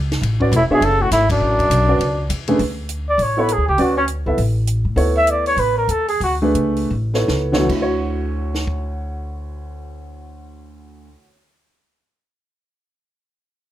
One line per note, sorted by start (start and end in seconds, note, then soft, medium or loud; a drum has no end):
0.00 0.21 C#2 medium
0.12 snare medium
0.12 ride soft
0.22 0.51 A1 medium
0.22 ride medium
0.40 0.51 C#4 medium
0.40 0.51 F#4 medium
0.40 0.51 B4 medium
0.40 0.51 D5 medium
0.40 kick medium
0.52 0.69 E1 medium
0.52 0.62 A2 medium
0.52 hi-hat pedal medium
0.52 ride medium
0.56 0.63 E4 medium
0.70 0.85 B2 medium
0.70 0.81 D4 medium
0.70 0.81 G#4 medium
0.70 0.85 G#4 medium
0.70 0.81 C#5 medium
0.70 0.81 E5 medium
0.70 muted upright bass stroke soft
0.81 1.10 F#1 medium
0.81 1.03 C#3 medium
0.81 1.03 A4 loud
0.81 ride medium
1.02 1.11 A2 medium
1.02 1.12 F#4 medium
1.11 1.40 G#1 medium
1.11 1.29 A2 medium
1.11 1.29 E4 medium
1.11 snare soft
1.11 hi-hat pedal soft
1.11 ride medium
1.29 2.26 F#2 medium
1.29 2.27 D4 medium
1.29 kick medium
1.29 ride medium
1.40 1.69 A1 medium
1.59 kick medium
1.59 ride soft
1.70 1.98 B1 medium
1.70 hi-hat pedal medium
1.70 ride medium
1.88 1.98 C#4 medium
1.88 1.99 F#4 medium
1.88 1.99 B4 medium
1.88 1.99 D5 medium
1.99 2.28 C#2 medium
1.99 ride medium
2.29 2.58 E2 medium
2.29 hi-hat pedal medium
2.29 ride medium
2.48 2.58 C#3 medium
2.48 2.58 A3 medium
2.48 2.59 D4 medium
2.48 2.59 G#4 medium
2.48 2.59 B4 medium
2.48 ride soft
2.59 3.16 D2 medium
2.59 open hi-hat soft
2.89 closed hi-hat soft
3.09 3.24 D5 medium
3.18 3.55 A1 medium
3.18 open hi-hat soft
3.23 3.42 C#5 medium
3.37 3.47 B3 medium
3.37 3.47 E4 medium
3.37 3.48 A4 medium
3.37 3.54 B4 medium
3.37 3.48 C#5 medium
3.49 closed hi-hat medium
3.53 3.68 G#4 medium
3.58 3.67 D2 medium
3.68 3.77 C#2 medium
3.68 3.84 G4 medium
3.78 4.23 D2 medium
3.78 3.95 C#4 medium
3.78 3.95 F#4 medium
3.78 3.95 B4 medium
3.78 3.95 D5 medium
3.78 open hi-hat soft
3.82 3.97 F#4 medium
3.97 4.04 C#4 medium
4.08 closed hi-hat soft
4.26 4.37 C#2 medium
4.26 4.36 B3 medium
4.26 4.37 E4 medium
4.26 4.37 A4 medium
4.26 4.37 E5 medium
4.38 4.82 A1 medium
4.38 open hi-hat soft
4.67 closed hi-hat medium
4.85 4.95 A2 medium
4.96 5.54 D2 medium
4.96 5.81 B3 medium
4.96 5.81 E4 medium
4.96 5.81 A4 medium
4.96 5.81 C#5 medium
4.96 open hi-hat soft
5.17 5.32 E5 medium
5.27 5.46 D5 medium
5.27 closed hi-hat soft
5.46 5.61 C#5 medium
5.46 open hi-hat soft
5.56 5.86 A1 medium
5.56 5.77 B4 medium
5.56 open hi-hat soft
5.78 5.92 A#4 medium
5.88 6.18 D#2 medium
5.88 6.08 A4 medium
5.88 closed hi-hat medium
6.08 6.20 G#4 medium
6.08 open hi-hat soft
6.20 6.52 D2 medium
6.20 6.35 F#4 medium
6.20 open hi-hat soft
6.42 6.88 A3 medium
6.42 6.88 D4 medium
6.42 6.88 G#4 medium
6.42 6.88 B4 medium
6.55 6.88 C#2 medium
6.55 closed hi-hat soft
6.77 open hi-hat soft
6.90 7.26 A1 medium
7.14 7.51 B3 medium
7.14 7.51 E4 soft
7.14 7.51 A4 soft
7.14 7.51 C#5 medium
7.14 snare soft
7.28 7.66 C#2 medium
7.28 snare medium
7.52 7.62 D3 medium
7.52 7.67 B3 medium
7.52 7.67 E4 medium
7.52 7.68 A4 medium
7.52 7.68 C#5 medium
7.52 snare medium
7.57 11.06 D2 medium
7.63 11.12 D3 medium
7.69 11.14 D2 medium
7.69 11.19 E4 medium
7.69 kick soft
7.69 crash medium
7.76 11.24 F#4 medium
7.82 11.31 C#5 medium
8.54 snare soft
8.67 kick medium